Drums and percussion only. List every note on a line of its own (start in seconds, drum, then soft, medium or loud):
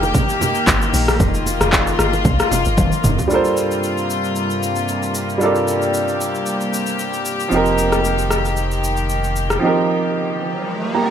0.03 high bongo medium
0.03 low bongo medium
0.03 shaker soft
0.14 kick loud
0.14 low conga medium
0.14 shaker medium
0.29 shaker medium
0.41 low bongo medium
0.41 low conga medium
0.41 shaker loud
0.55 shaker medium
0.67 kick loud
0.67 clap medium
0.67 high bongo medium
0.67 shaker medium
0.82 shaker medium
0.94 open hi-hat medium
0.94 shaker medium
1.08 cross-stick medium
1.08 low bongo medium
1.08 shaker medium
1.20 kick loud
1.20 low conga medium
1.20 shaker medium
1.34 shaker soft
1.46 low bongo medium
1.46 shaker medium
1.61 cross-stick medium
1.61 shaker medium
1.73 kick loud
1.73 clap medium
1.73 high bongo medium
1.73 shaker medium
1.87 shaker medium
1.99 cross-stick medium
1.99 shaker loud
2.13 high bongo medium
2.13 low bongo medium
2.13 shaker soft
2.25 kick loud
2.25 low conga medium
2.25 shaker medium
2.40 cross-stick medium
2.40 shaker medium
2.52 low bongo medium
2.52 low conga medium
2.52 shaker loud
2.65 shaker medium
2.77 kick loud
2.77 high tom medium
2.77 high bongo medium
2.77 shaker medium
2.92 shaker medium
3.04 mid tom loud
3.04 shaker loud
3.19 floor tom loud
3.19 low bongo medium
3.19 shaker soft
3.30 shaker medium
3.45 shaker soft
3.57 shaker medium
3.71 shaker medium
3.83 shaker medium
3.98 shaker soft
4.10 shaker medium
4.24 shaker soft
4.36 shaker medium
4.50 shaker medium
4.63 shaker medium
4.76 shaker medium
4.88 shaker medium
5.03 shaker soft
5.15 shaker medium
5.30 shaker soft
5.41 shaker medium
5.55 shaker soft
5.68 shaker medium
5.82 shaker medium
5.94 shaker medium
6.08 shaker medium
6.21 shaker medium
6.35 shaker soft
6.46 shaker medium
6.61 shaker medium
6.74 shaker medium
6.87 shaker medium
6.99 shaker medium
7.13 shaker medium
7.25 shaker medium
7.40 shaker soft
7.51 shaker medium
7.66 shaker soft
7.78 shaker medium
7.92 cross-stick medium
7.92 shaker medium
8.05 shaker medium
8.19 shaker medium
8.31 cross-stick medium
8.31 shaker medium
8.45 shaker soft
8.57 shaker medium
8.71 shaker medium
8.84 shaker medium
8.97 shaker medium
9.09 shaker medium
9.24 shaker medium
9.36 shaker medium
9.50 cross-stick medium
9.50 shaker soft